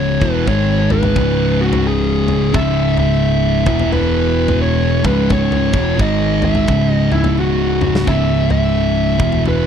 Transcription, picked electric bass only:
0.00 0.18 C#1 medium
0.22 0.46 E1 medium
0.47 1.13 G#1 medium
1.16 2.51 C#1 loud
2.55 3.63 C#1 medium
3.67 5.01 E1 medium
5.04 5.70 C#1 loud
5.74 5.98 E1 medium
6.00 6.65 G#1 medium
6.68 8.03 C#1 medium
8.07 9.16 C#1 loud
9.20 9.67 E1 medium

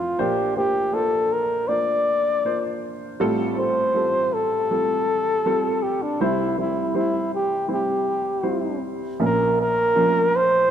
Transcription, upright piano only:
0.00 0.15 F1 medium
0.00 0.15 F2 medium
0.00 0.21 F3 soft
0.00 0.21 A3 medium
0.00 0.21 C4 soft
0.00 0.19 C5 medium
0.19 3.15 A#1 soft
0.19 3.16 A#2 soft
0.19 0.53 A#3 medium
0.19 0.53 D4 medium
0.19 0.53 F4 medium
0.19 0.53 C5 medium
0.57 0.91 A#3 soft
0.57 0.91 D4 soft
0.57 0.91 F4 soft
0.57 0.91 C5 medium
0.92 1.61 A#3 medium
0.92 1.61 D4 soft
0.92 1.62 F4 medium
0.92 1.62 C5 medium
1.69 2.37 A#3 medium
1.69 2.37 D4 soft
1.69 2.37 F4 soft
1.69 2.37 C5 medium
2.45 3.12 A#3 medium
2.45 3.13 D4 soft
2.45 3.13 F4 soft
2.45 3.13 C5 medium
3.20 6.16 A1 medium
3.20 6.16 A2 medium
3.20 3.54 G3 medium
3.20 3.54 C4 medium
3.20 3.54 F4 medium
3.20 3.54 A4 medium
3.57 3.91 G3 soft
3.57 3.91 C4 soft
3.57 3.91 F4 soft
3.57 3.92 A4 soft
3.95 4.62 G3 medium
3.95 4.63 C4 soft
3.95 4.63 F4 medium
3.95 4.63 A4 medium
4.71 5.38 G3 medium
4.71 5.38 C4 soft
4.71 5.38 F4 soft
4.71 5.38 A4 medium
5.46 6.13 G3 medium
5.46 6.13 C4 medium
5.46 6.13 F4 medium
5.46 6.13 A4 medium
6.21 9.17 C2 soft
6.21 9.16 C3 soft
6.21 6.54 G3 medium
6.21 6.54 C4 medium
6.21 6.54 E4 medium
6.21 6.54 C5 medium
6.58 6.91 G3 soft
6.58 6.91 C4 soft
6.58 6.92 E4 soft
6.58 6.92 C5 soft
6.94 7.62 G3 medium
6.94 7.62 C4 soft
6.94 7.62 E4 soft
6.94 7.63 C5 medium
7.68 8.37 G3 soft
7.68 8.37 C4 soft
7.68 8.37 E4 soft
7.68 8.37 C5 medium
8.43 9.12 G3 medium
8.43 9.12 C4 soft
8.43 9.12 E4 soft
8.43 9.12 C5 medium
9.20 10.66 A#1 medium
9.20 10.66 A#2 medium
9.20 9.88 F3 medium
9.20 9.88 A#3 medium
9.20 9.88 C#4 medium
9.20 9.88 A#4 medium
9.96 10.63 F3 medium
9.96 10.63 A#3 medium
9.96 10.63 C#4 medium
9.96 10.63 A#4 medium

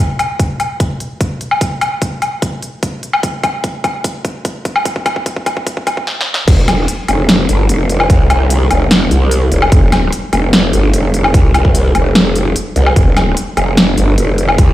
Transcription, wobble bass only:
6.48 6.87 F1 loud
7.08 7.47 F1 loud
7.49 7.68 G1 loud
7.69 8.08 F1 loud
8.10 8.69 C2 loud
8.71 9.10 F1 loud
9.11 9.50 C2 loud
9.52 9.70 F1 loud
9.72 10.11 F1 loud
10.33 10.72 F1 loud
10.73 10.92 G1 loud
10.94 11.33 F1 loud
11.34 11.93 C2 loud
11.95 12.54 F1 loud
12.76 12.95 C2 medium
12.96 13.35 F1 loud
13.57 13.96 F1 loud
13.98 14.16 G1 loud
14.18 14.57 F1 loud
14.58 14.73 C2 loud

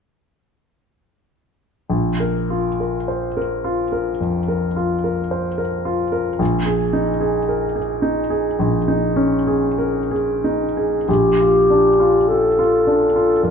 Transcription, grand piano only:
1.90 4.17 A#1 soft
2.20 2.68 A#4 soft
2.50 2.97 F4 soft
2.80 3.26 A#4 soft
3.08 3.37 C5 soft
3.37 3.82 A#4 soft
3.64 4.10 F4 soft
3.92 4.37 A#4 soft
4.21 4.65 F2 soft
4.48 4.93 A#4 soft
4.76 5.21 F4 soft
5.04 5.48 A#4 soft
5.31 5.59 C5 soft
5.58 6.02 A#4 soft
5.85 6.29 F4 soft
6.12 6.40 A#4 soft
6.39 8.55 A#1 soft
6.66 7.10 G#4 soft
6.93 7.37 D#4 soft
7.21 7.64 G#4 soft
7.49 7.76 A#4 soft
7.76 8.20 G#4 soft
8.02 8.48 D#4 soft
8.30 8.76 G#4 soft
8.59 11.04 A#1 soft
8.88 9.35 D#4 soft
9.16 9.65 C#4 soft
9.47 9.97 G#4 soft
9.79 10.10 A#4 soft
10.11 10.64 G#4 soft
10.44 10.96 D#4 soft
10.77 11.08 G#4 soft
11.09 13.39 A#1 soft
11.40 11.87 F4 soft
11.70 12.17 D4 soft
12.00 12.46 F4 soft
12.30 12.58 G4 soft
12.59 13.04 F4 soft
12.87 13.32 D4 soft
13.16 13.50 F4 soft
13.43 13.50 F2 soft

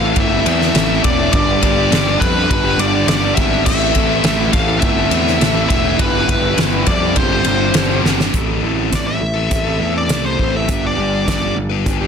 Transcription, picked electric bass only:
0.00 0.12 A1 medium
0.16 0.41 G1 medium
0.46 0.70 E2 loud
0.74 0.99 A1 loud
1.04 1.29 E1 medium
1.33 1.58 G1 loud
1.62 1.87 G1 medium
1.90 2.16 G1 loud
2.21 2.46 F2 medium
2.50 2.75 G1 loud
2.78 3.03 G1 medium
3.07 3.32 G1 loud
3.37 3.66 G#1 loud
3.66 3.91 A1 loud
3.95 4.20 A1 medium
4.24 4.49 A1 loud
4.53 4.78 A1 medium
4.82 5.07 G1 medium
5.11 5.36 E2 loud
5.41 5.66 A1 medium
5.70 5.95 E1 medium
5.99 6.24 G1 medium
6.29 6.54 G1 medium
6.57 6.82 G1 medium
6.87 7.17 F2 medium
7.16 7.41 G1 medium
7.46 7.70 G1 medium
7.74 8.00 G1 loud
8.04 8.29 G1 medium
8.34 8.62 A1 medium
8.63 8.91 A1 medium
8.92 9.20 A1 medium
9.21 9.50 A1 medium
9.51 9.79 A1 medium
9.80 10.08 E2 medium
10.10 10.38 C2 medium
10.39 10.67 A1 medium
10.69 10.96 G1 medium
10.97 11.25 G1 medium
11.28 11.55 G1 medium
11.55 11.84 G1 medium
11.86 12.07 G1 loud

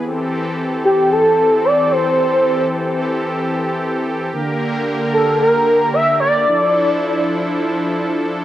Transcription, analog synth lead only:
0.85 1.09 G4 medium
1.11 1.66 A4 loud
1.65 1.93 D5 loud
1.92 2.99 C5 loud
5.13 5.38 A4 medium
5.40 5.90 A#4 medium
5.93 6.18 E5 loud
6.20 7.23 D5 loud

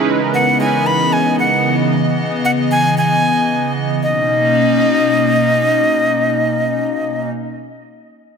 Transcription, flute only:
0.34 0.58 F#5 loud
0.60 0.88 G#5 loud
0.86 1.14 B5 loud
1.13 1.39 G#5 loud
1.40 1.76 F#5 medium
2.45 2.51 F#5 loud
2.71 2.95 G#5 loud
2.98 3.72 G#5 loud
4.03 7.31 D#5 loud

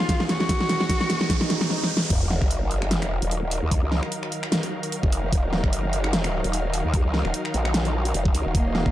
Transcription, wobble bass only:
2.10 2.40 D#1 loud
2.42 2.98 F#1 loud
2.98 3.20 F1 loud
3.22 3.61 D#1 loud
3.62 3.81 D#2 medium
3.82 4.01 C#2 loud
5.03 5.31 F1 loud
5.33 5.62 D#1 loud
5.64 6.43 F#1 loud
6.44 6.83 D#1 loud
6.85 7.03 D#2 medium
7.05 7.23 C#2 loud
7.25 7.32 D#1 loud
7.54 8.13 A#1 medium
8.14 8.33 F1 loud
8.35 8.44 C#2 loud
8.46 8.53 D#1 medium
8.55 8.84 D#1 loud
8.86 8.91 F#1 loud

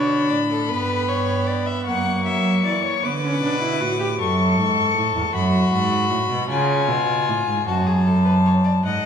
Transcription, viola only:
0.00 0.66 D4 medium
0.71 1.89 B3 medium
1.87 3.03 A#3 medium
3.04 3.12 B3 medium
3.25 3.43 C#4 medium
3.43 3.61 D4 medium
3.62 3.82 E4 medium
3.80 3.99 F#4 medium
4.00 4.08 G4 medium

